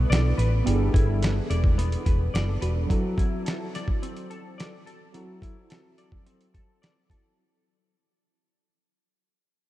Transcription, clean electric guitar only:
Already playing: G3 B3 E4 B4
0.10 D5
0.38 B4
0.66 G3
0.94 E4
1.22 B4
1.50 D5
1.78 B3
2.05 B4
2.34 D5
2.62 B4
2.90 F#3
3.18 E4
3.46 A4
3.75 D5
4.02 C4
4.30 A4
4.58 D5
4.86 A4
5.14 F#3
5.42 E4
5.70 A4
5.98 D5
6.27 C4
6.54 A4
6.82 D5
7.11 A4

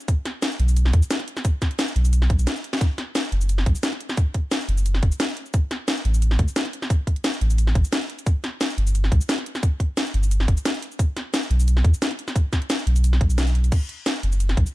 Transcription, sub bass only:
0.60 B1
0.94 E2
1.96 B1
2.30 B1
3.32 F#1
3.66 B1
4.69 F#1
5.03 F#1
6.05 A1
6.39 D2
7.41 A1
7.75 A1
8.78 G1
9.12 C2
10.14 G1
10.48 G1
11.50 B1
11.85 E2
12.87 B1
13.21 B1
14.23 F#1
14.57 B1

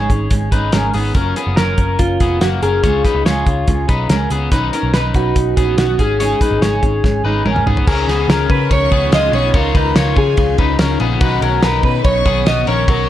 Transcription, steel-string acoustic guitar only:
Already playing: G#2 C#3 G#3 C#4
0.10 G#3 C#4 D#4 G#4
0.30 G#3 C#4 D#4 G#4
0.51 G#3 C#4 D#4 G#4
0.73 G#2 C#3 G#3 C#4 D#4 G#4
0.94 G#3 C#4 D#4 G#4
1.15 F#3 C#4 F4 A#4
1.37 C#4 F4 A#4
1.57 F#3 C#4 F4 A#4
1.79 C#4 F4 A#4
1.99 F#3 C#4 F4 A#4
2.20 C#4 F4 A#4
2.41 F#3 C#4 F4 A#4
2.63 C#4 F4 A#4
2.84 C#3 G#3 C#4 F4 G#4
3.05 C#4 F4 G#4
3.25 C#3 G#3 C#4 F4 G#4
3.46 C#4 F4 G#4
3.68 G#3 C#4 F4 G#4
3.88 C#4 F4 G#4
4.10 C#3 G#3 C#4 F4 G#4
4.32 C#4 F4 G#4
4.51 B2 D#3 F#3 C#4 D#4 B4
4.73 F#3 C#4 D#4 B4
4.94 B2 D#3 F#3 C#4 D#4 B4
5.15 F#3 C#4 D#4 B4
5.35 F#3 C#4 D#4 B4
5.57 F#3 C#4 D#4 B4
5.77 B2 D#3 F#3 C#4 D#4 B4
5.99 G#3 C#4 D#4 G#4
6.20 G#2 C#3 G#3 C#4 D#4 G#4
6.41 G#3 C#4 D#4 G#4
6.62 G#2 C#3 G#3 C#4 D#4 G#4
6.83 G#3 C#4 D#4 G#4
7.03 G#3 C#4 D#4 G#4
7.25 G#3 C#4 D#4 G#4
7.45 G#2 C#3 G#3 C#4 D#4 G#4
7.66 G#3 C#4 D#4 G#4

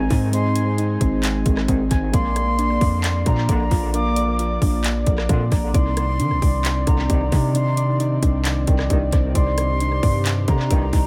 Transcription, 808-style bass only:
0.11 G#2
1.01 G#1
1.46 G#1
1.68 G#1
1.91 G#1
2.14 A#1
2.81 F2
3.26 A#2
3.49 A#1
3.71 A#1
4.62 A#1
5.07 A#1
5.29 A#2
5.52 A#1
5.74 C2
6.20 D#3
6.31 C2
6.42 C2
6.87 C2
7.10 C2
7.32 C3
8.23 C2
8.68 C2
8.90 C2
9.13 C2
9.35 C2
10.03 G2
10.48 C3
10.71 C2
10.93 C2

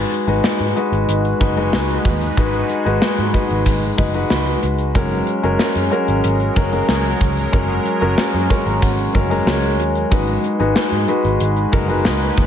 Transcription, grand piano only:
Already playing: G#3 D#4 F#4 B4
0.27 G#3 D#4 F#4 B4
0.76 G#3 D#4 F#4 B4
1.40 G#3 D#4 F#4 B4
1.56 G#3 D#4 F#4 B4
2.37 G#3 D#4 F#4 B4
2.85 G#3 D#4 F#4 B4
3.33 G#3 D#4 F#4 B4
3.98 G#3 D#4 F#4 B4 D#5
4.14 G#3 D#4 F#4 B4 F#5
4.30 B5
4.95 G#3 C#4 F#4 A#4
5.43 G#3 C#4 F#4 A#4
5.91 G#3 C#4 F#4 A#4
6.56 G#3 C#4 F#4 A#4
6.72 G#3 C#4 F#4 A#4
7.52 G#3 C#4 F#4 A#4
8.01 G#3 C#4 F#4 A#4
8.49 G#3 C#4 F#4 A#4 C#6
8.66 A#5
8.82 F#5
9.14 G#3 C#4 F#4 A#4
9.30 G#3 C#4 F#4 A#4
9.47 C#5
10.11 G#3 D#4 F#4 B4
10.59 G#3 D#4 F#4 B4
11.08 G#3 D#4 F#4 B4
11.72 G#3 D#4 F#4 A#4
11.88 G#3 D#4 F#4 B4

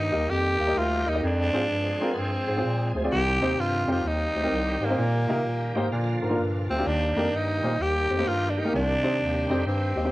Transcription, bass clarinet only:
0.13 D#2
0.29 F2
0.59 D#2
0.76 D2
1.06 D#2
1.23 F2
1.53 G#2
1.69 G2
2.16 G2
2.48 G#2
2.64 A#2
2.94 D2
3.11 C2
3.41 D#2
3.57 G2
3.86 F2
4.03 D#2
4.34 D2
4.49 C2
4.80 G#2
4.98 A#2
5.28 C3
5.46 A#2
5.75 G#2
5.92 A#2
6.22 G#2
6.39 G2
6.70 D2
6.86 D#2
7.15 F2
7.31 G2
7.62 A#2
7.80 D#2
8.10 F2
8.26 G2
8.73 C2
9.20 D#2
9.49 F2
9.66 G2
9.96 D#2

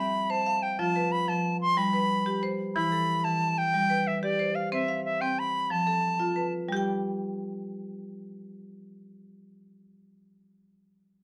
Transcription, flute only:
0.00 B5
0.30 A5
0.62 G5
0.79 A5
1.12 B5
1.29 A5
1.61 C6
1.77 B5
2.75 B5
3.24 A5
3.58 G5
4.07 E5
4.23 D5
4.55 F5
4.73 E5
5.05 E5
5.21 G5
5.39 B5
5.71 A5

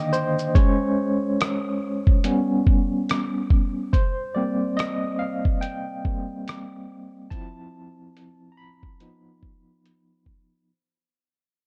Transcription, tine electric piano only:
Already playing: D3 D#3 A#3 D4 D#5 F5 G5
0.13 C5
0.55 G#3 C#4 C5 C#5
2.24 G3 B3 C#4
3.93 C5
4.35 G3 A#3 C4 D5
4.77 D#5
5.19 F5
5.61 G5
6.05 G3 A#3 C4
7.30 F3 C4 E4 A5
8.52 A#5
8.57 B5
9.01 F3 B3 D#4

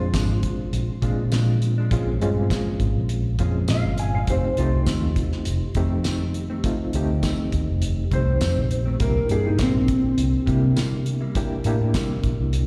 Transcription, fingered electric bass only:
Already playing: F2
0.14 G#1
0.59 muted fingered electric bass stroke
0.73 A#1
1.02 A#2
1.91 A#1
2.22 G2
2.80 G#1
2.96 A#1
3.38 F2
3.69 A#2
3.85 G1
4.28 F1
4.58 C2
5.33 muted fingered electric bass stroke
5.47 F1
5.75 F2
6.94 D2
7.52 D#2
7.69 F1
8.11 C2
8.41 F2
8.57 A#1
9.00 C2
9.30 G2
9.59 A#1
10.04 muted fingered electric bass stroke
10.18 C2
10.48 C3
11.65 A2
12.24 A#1
12.39 C2

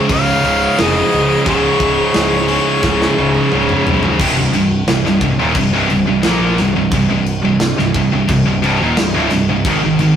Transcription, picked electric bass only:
0.10 C#1
0.45 C#1
0.80 F1
1.14 C#1
1.46 C#1
1.80 C#1
2.16 C#1
2.83 C#1
3.19 C#1
3.53 C#1
3.87 B1
4.19 C1
4.37 C1
4.53 C1
4.87 C1
5.05 C1
5.21 C1
5.38 D#1
5.55 C1
5.73 C1
5.91 C1
6.07 C1
6.24 A#1
6.58 C1
6.75 C1
6.92 C1
7.10 C1
7.44 C1
7.79 C1
7.94 C1
8.13 C1
8.29 C1
8.46 C1
8.64 C1
8.82 D#1
8.98 C1
9.15 D1
9.31 C1
9.49 C1
9.65 G#1
9.83 G#1
9.99 G#1

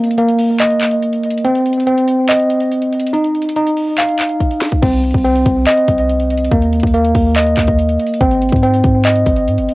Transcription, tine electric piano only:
Already playing: A#3
0.18 A#3
0.60 D#5
1.45 C4
1.87 C4
2.29 D#5
3.13 D#4
3.56 D#4
3.98 F5
4.82 C4
5.25 C4
5.67 D#5
6.52 A#3
6.94 A#3
7.36 D#5
8.21 C4
8.63 C4
9.05 D#5

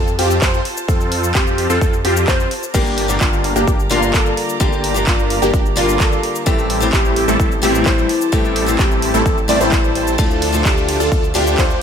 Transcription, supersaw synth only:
0.19 C4 F4 G4
0.42 C4 F4 C5
0.88 C4 F4 A4
1.35 C4 F4 G4
1.70 C4 F4 A4
1.81 C4 F4 A4
2.05 C4 F4 G4
2.28 C4 F4 C5
2.74 A#3 D4 G4
3.21 A#3 D4 F4
3.56 A#3 D4 G4
3.67 D4 G4
3.91 A#3 D4 F4
4.14 A#3 D4 A4
4.61 A#3 D4 G4
5.07 A#3 D4 F4
5.42 A#3 D4 G4
5.54 A#3 D4 G4
5.77 A#3 D4 F4
6.00 A#3 D4 A4
6.47 G3 A3 C4 E4 A4
6.93 G3 A3 C4 E4 G4
7.28 G3 A3 C4 E4 A4
7.40 G3 A3 C4 E4 A4
7.63 G3 A3 C4 E4 G4
7.86 G3 A3 C4 E4 C5
8.33 G3 A3 C4 E4 A4
8.79 G3 A3 C4 E4 G4
9.14 G3 A3 C4 E4 A4
9.26 G3 A3 C4 E4 A4
9.49 G3 A3 C4 E4 D5
9.61 G3 A3 C4 E4 C5
10.19 D4 F4 A4
10.65 D4 F4 G4
11.00 D4 F4 A4
11.12 D4 F4 A4
11.35 D4 F4 G4
11.58 D4 F4 C5

